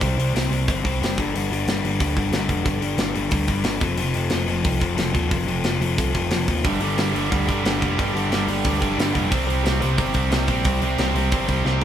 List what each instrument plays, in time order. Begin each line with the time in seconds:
0.01 picked electric bass C2, overdriven electric guitar C3 G3 C4, kick, open hi-hat
0.18 picked electric bass C2, overdriven electric guitar C3 G3 C4, open hi-hat
0.34 picked electric bass C2, overdriven electric guitar C3 G3 C4, snare, open hi-hat
0.50 picked electric bass C2, overdriven electric guitar C3 G3 C4, open hi-hat
0.68 picked electric bass G1, overdriven electric guitar C3 G3 C4, kick, open hi-hat
0.84 picked electric bass C2, overdriven electric guitar C3 G3 C4, kick, open hi-hat
1.00 picked electric bass F#1, overdriven electric guitar C3 G3 C4, snare, open hi-hat
1.17 picked electric bass G1, overdriven electric guitar G2 D3 G3, kick, open hi-hat
1.34 picked electric bass G1, overdriven electric guitar G2 D3 G3, open hi-hat
1.50 picked electric bass G1, overdriven electric guitar G2 D3 G3, open hi-hat
1.68 picked electric bass G1, overdriven electric guitar G2 D3 G3, snare, open hi-hat
1.84 picked electric bass G1, overdriven electric guitar G2 D3 G3, open hi-hat
2.00 picked electric bass D2, overdriven electric guitar G2 D3 G3, kick, open hi-hat
2.16 picked electric bass G1, overdriven electric guitar G2 D3 G3, kick, open hi-hat
2.32 picked electric bass G1, overdriven electric guitar G2 D3 G3, snare, open hi-hat
2.49 picked electric bass F1, overdriven electric guitar G2 D3 G3, kick, open hi-hat
2.64 picked electric bass G1, overdriven electric guitar G2 D3 G3, kick, open hi-hat
2.80 picked electric bass G1, overdriven electric guitar G2 D3 G3, open hi-hat
2.98 picked electric bass G1, overdriven electric guitar G2 D3 G3, snare, open hi-hat
3.15 picked electric bass G1, overdriven electric guitar G2 D3 G3, open hi-hat
3.30 picked electric bass D2, overdriven electric guitar G2 D3 G3, kick, open hi-hat
3.47 picked electric bass G1, overdriven electric guitar G2 D3 G3, kick, open hi-hat
3.64 picked electric bass G1, overdriven electric guitar G2 D3 G3, snare, open hi-hat
3.80 picked electric bass F1, overdriven electric guitar F2 C3 F3, kick, open hi-hat
3.97 picked electric bass F1, overdriven electric guitar F2 C3 F3, open hi-hat
4.14 picked electric bass F1, overdriven electric guitar F2 C3 F3, open hi-hat
4.30 picked electric bass F1, overdriven electric guitar F2 C3 F3, snare, open hi-hat
4.47 picked electric bass F1, overdriven electric guitar F2 C3 F3, open hi-hat
4.64 picked electric bass C2, overdriven electric guitar F2 C3 F3, kick, open hi-hat
4.80 picked electric bass F1, overdriven electric guitar F2 C3 F3, kick, open hi-hat
4.96 picked electric bass F1, overdriven electric guitar F2 C3 F3, snare, open hi-hat
5.13 picked electric bass D#2, overdriven electric guitar F2 C3 F3, kick, open hi-hat
5.30 picked electric bass F1, overdriven electric guitar F2 C3 F3, kick, open hi-hat
5.47 picked electric bass F1, overdriven electric guitar F2 C3 F3, open hi-hat
5.63 picked electric bass F1, overdriven electric guitar F2 C3 F3, snare, open hi-hat
5.80 picked electric bass F1, overdriven electric guitar F2 C3 F3, open hi-hat
5.97 picked electric bass C2, overdriven electric guitar F2 C3 F3, kick, open hi-hat
6.13 picked electric bass F1, overdriven electric guitar F2 C3 F3, kick, open hi-hat
6.30 picked electric bass F1, overdriven electric guitar F2 C3 F3, snare, open hi-hat
6.47 picked electric bass D#2, overdriven electric guitar F2 C3 F3, kick, open hi-hat
6.64 picked electric bass G1, overdriven electric guitar G2 D3 G3, kick, open hi-hat
6.80 picked electric bass G1, overdriven electric guitar G2 D3 G3, open hi-hat
6.97 picked electric bass G1, overdriven electric guitar G2 D3 G3, snare, open hi-hat
7.13 picked electric bass G1, overdriven electric guitar G2 D3 G3, open hi-hat
7.30 picked electric bass D2, overdriven electric guitar G2 D3 G3, kick, open hi-hat
7.47 picked electric bass G1, overdriven electric guitar G2 D3 G3, kick, open hi-hat
7.63 picked electric bass G1, overdriven electric guitar G2 D3 G3, snare, open hi-hat
7.80 picked electric bass F1, overdriven electric guitar G2 D3 G3, kick, open hi-hat
7.97 picked electric bass G1, overdriven electric guitar G2 D3 G3, kick, open hi-hat
8.14 picked electric bass G1, overdriven electric guitar G2 D3 G3, open hi-hat
8.30 picked electric bass G1, overdriven electric guitar G2 D3 G3, snare, open hi-hat
8.48 picked electric bass G1, overdriven electric guitar G2 D3 G3, open hi-hat
8.65 picked electric bass D2, overdriven electric guitar G2 D3 G3, kick, open hi-hat
8.80 picked electric bass G1, overdriven electric guitar G2 D3 G3, kick, open hi-hat
8.97 picked electric bass G1, overdriven electric guitar G2 D3 G3, snare, open hi-hat
9.14 picked electric bass F1, overdriven electric guitar G2 D3 G3, kick, open hi-hat
9.30 picked electric bass C2, overdriven electric guitar C3 G3 C4, kick, open hi-hat
9.47 picked electric bass C2, overdriven electric guitar C3 G3 C4, open hi-hat
9.64 picked electric bass C2, overdriven electric guitar C3 G3 C4, snare, open hi-hat
9.80 picked electric bass C2, overdriven electric guitar C3 G3 C4, open hi-hat
9.97 picked electric bass G1, overdriven electric guitar C3 G3 C4, kick, open hi-hat
10.14 picked electric bass C2, overdriven electric guitar C3 G3 C4, kick, open hi-hat
10.31 picked electric bass C2, overdriven electric guitar C3 G3 C4, snare, open hi-hat
10.47 picked electric bass A#1, overdriven electric guitar C3 G3 C4, kick, open hi-hat
10.65 picked electric bass C2, overdriven electric guitar C3 G3 C4, kick, open hi-hat
10.81 picked electric bass C2, overdriven electric guitar C3 G3 C4, open hi-hat
10.97 picked electric bass C2, overdriven electric guitar C3 G3 C4, snare, open hi-hat
11.14 picked electric bass C2, overdriven electric guitar C3 G3 C4, open hi-hat
11.32 picked electric bass G1, overdriven electric guitar C3 G3 C4, kick, open hi-hat
11.48 picked electric bass C2, overdriven electric guitar C3 G3 C4, kick, open hi-hat
11.64 picked electric bass C2, overdriven electric guitar C3 G3 C4, snare